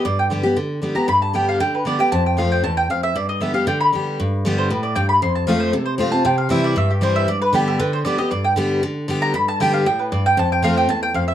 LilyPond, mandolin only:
\new Staff \with { instrumentName = "Mandolin" } { \time 4/4 \key g \mixolydian \tempo 4 = 232 d''8 g''8 r2 r8 bes''8 | b''8 a''8 g''8 f''8 g''8 b'8 d''8 g''8 | a''8 g''8 f''8 g''8 a''8 g''8 f''8 e''8 | d''8 ees''8 e''8 f''8 g''8 b''8 r4 |
r4. c''8 b'8 d''8 g''8 b''8 | c'''8 a''8 f''8 c''8 a'8 c''8 r8 a''8 | g''8 f''8 e''8 d''8 e''8 g'8 c''8 e''8 | d''8 b'8 g'8 a'8 b'8 c''8 d''8 ees''8 |
d''8 g''8 r2 r8 bes''8 | b''8 a''8 g''8 f''8 g''8 b'8 d''8 g''8 | a''8 g''8 f''8 g''8 a''8 g''8 f''8 e''8 | }